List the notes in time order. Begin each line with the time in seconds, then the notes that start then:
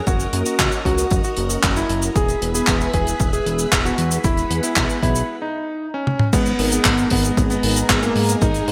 Already playing: F#4 A#4 A#5
0.07 F#1 F#4 D#5, kick, closed hi-hat, cabasa
0.20 closed hi-hat, cabasa
0.33 F#2 A#3 C#4 F#4 A#4, closed hi-hat
0.46 F#4, closed hi-hat, cabasa
0.59 C#2, kick, clap, closed hi-hat, cabasa
0.72 closed hi-hat, cabasa
0.85 C#2 A#3 C#4 F#4 A#4, kick, closed hi-hat
0.98 closed hi-hat, cabasa
1.10 F#1, kick, closed hi-hat, cabasa
1.24 F#4, closed hi-hat, cabasa
1.37 F#1 A#3 C#4 F#4 A#4, closed hi-hat
1.50 closed hi-hat, cabasa
1.63 F#1, kick, clap, closed hi-hat, cabasa
1.76 A#3 C#4 E4 F#4 A#4, closed hi-hat, cabasa
1.89 F#1 A#3 C#4 F#4 A#4, closed hi-hat
2.02 closed hi-hat, cabasa
2.16 E1 G#4 B4 E5 B5, kick, closed hi-hat, cabasa
2.28 closed hi-hat, cabasa
2.42 E1 B3 E4 G#4 B4, closed hi-hat
2.55 G#4, closed hi-hat, cabasa
2.67 E1, kick, clap, closed hi-hat, cabasa
2.81 closed hi-hat, cabasa
2.94 E1 B3 E4 G#4 B4, kick, closed hi-hat
3.07 closed hi-hat, cabasa
3.20 E1, kick, closed hi-hat, cabasa
3.33 G#4, closed hi-hat, cabasa
3.46 E1 B3 E4 G#4 B4, closed hi-hat
3.59 closed hi-hat, cabasa
3.72 E1, kick, clap, closed hi-hat, cabasa
3.85 B3 E4 F#4 G#4 B4, closed hi-hat, cabasa
3.98 E2 B3 E4 G#4 B4, closed hi-hat
4.11 closed hi-hat, cabasa
4.24 E1 E4 F#5, kick, closed hi-hat, cabasa
4.37 closed hi-hat, cabasa
4.50 E2 B3 E4 G#4 B4, closed hi-hat
4.63 E4, closed hi-hat, cabasa
4.76 B1, kick, clap, closed hi-hat, cabasa
4.89 closed hi-hat, cabasa
5.03 B1 B3 E4 G#4 B4, kick, closed hi-hat
5.15 closed hi-hat, cabasa
5.42 D#4
5.94 C#4
6.07 high tom
6.19 mid tom
6.33 G#1 G#3 B3 G#4 D#5 A#5, kick, closed hi-hat, crash, cabasa
6.46 closed hi-hat, cabasa
6.59 G#1 B3 D#4 G#4 A#4, open hi-hat
6.72 B3, closed hi-hat, cabasa
6.85 G#1, kick, clap, closed hi-hat, cabasa
6.98 closed hi-hat, cabasa
7.10 G#1 B3 D#4 G#4 A#4, kick, open hi-hat
7.24 closed hi-hat, cabasa
7.37 G#1, kick, closed hi-hat, cabasa
7.50 B3, closed hi-hat, cabasa
7.63 G#1 B3 D#4 G#4 A#4, open hi-hat
7.76 closed hi-hat, cabasa
7.89 G#1, kick, clap, closed hi-hat, cabasa
8.03 A#3 B3 D#4 G#4 A#4, closed hi-hat, cabasa
8.16 G#2 B3 D#4 G#4 A#4, open hi-hat
8.29 closed hi-hat, cabasa
8.42 G#1 D#4, kick, closed hi-hat, cabasa
8.54 closed hi-hat, cabasa
8.68 G#2 B3 D#4 G#4 A#4, open hi-hat